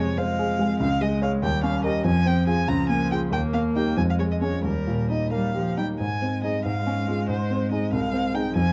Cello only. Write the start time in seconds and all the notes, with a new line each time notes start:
Already playing: G#3
0.18 G#3
0.80 G#3
1.42 G3
2.05 F3
2.68 F3
3.32 A#3
3.98 G#3
4.65 G3
5.34 G3
5.56 F3
5.78 G3
6.01 G#3
8.56 F3